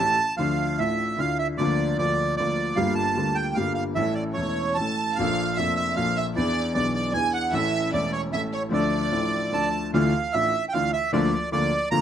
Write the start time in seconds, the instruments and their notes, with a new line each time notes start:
Already playing: grand piano A1 E3 C#4 G4, bandoneon A5
0.00 grand piano A2 A3
0.36 grand piano D2 D3 F3 A3 D4, bandoneon F5
0.41 grand piano F4
0.78 grand piano A1 A2 A3 D4 E4 F4, bandoneon E5
1.16 grand piano D2 D3 A3 D4 E4, bandoneon F5
1.21 grand piano F4
1.39 bandoneon E5
1.58 grand piano D2 D3 F3 A#3 F4, bandoneon D5
1.97 grand piano D2 D3 F3 A#3 F4, bandoneon D5
2.37 grand piano D2 D3 F3 A#3, bandoneon D5
2.42 grand piano F4
2.75 grand piano G1 G2 D3 G3 A#3, bandoneon F5
2.79 grand piano F4
2.95 bandoneon A5
3.15 grand piano D2 D3 G3 A#3
3.19 grand piano F4
3.35 bandoneon G5
3.55 grand piano G1 G2 D3 G3 A#3, bandoneon F5
3.59 grand piano F4
3.74 bandoneon F5
3.95 grand piano A1 A2 E3 A3 C#4 A4, bandoneon E5
4.14 bandoneon D5
4.34 grand piano E1 E2 E3 A3, bandoneon C#5, violin section C#5
4.38 grand piano C#4 A4
4.75 grand piano E3 A3, bandoneon A5, violin section A5
4.79 grand piano A1 A2 C#4 A4
5.15 grand piano A#2 F3 A#3, violin section F5, bandoneon F5
5.19 grand piano A#1 D4 A4
5.56 grand piano F1 F2 F3 A#3 D4, violin section E5, bandoneon E5
5.61 grand piano A4
5.76 violin section E5, bandoneon E5
5.95 grand piano A#1 A#2 F3 A#3 D4, violin section F5, bandoneon F5
5.99 grand piano A4
6.16 violin section E5, bandoneon E5
6.35 grand piano E2 E3 B3 D4 G#4, violin section D5, bandoneon D5
6.73 grand piano B1 B2 E3 B3 D4, bandoneon D5, violin section D5
6.77 grand piano G#4
6.93 violin section D5, bandoneon D5
7.12 grand piano E2 E3 B3 D4 G#4, bandoneon G#5, violin section G#5
7.33 violin section F#5, bandoneon F#5
7.51 grand piano A1 A2 E3 A3 C#4, bandoneon E5, violin section E5
7.55 grand piano A4
7.92 grand piano E1 E2 E3 A3 C#4 A4, violin section D5, bandoneon D5
8.13 bandoneon C#5, violin section C#5
8.30 grand piano A1 A2 E3 A3 C#4, bandoneon E5, violin section E5
8.34 grand piano A4
8.53 violin section C#5, bandoneon C#5
8.69 grand piano D2 D3 F3 A3 D4, violin section D5
8.73 grand piano A4, bandoneon D5
9.10 grand piano A1 A2 F3 A3 D4
9.14 grand piano A4
9.51 grand piano D2 D3 F3 A3 D4 A4, bandoneon A5
9.94 grand piano D2 D3 E3 A3 D4 F4, bandoneon F5
10.33 grand piano A1 A2 E3 A3 D4 F4, bandoneon E5
10.69 bandoneon G5
10.73 grand piano D2 D3 E3 A3 D4 F4, bandoneon F5
10.93 bandoneon E5
11.13 grand piano D2 D3 F3 A#3 F4, bandoneon D5
11.52 grand piano D2 D3 F3 A#3 F4, bandoneon D5
11.91 grand piano D2 D3 F3 A#3 F4, bandoneon A#5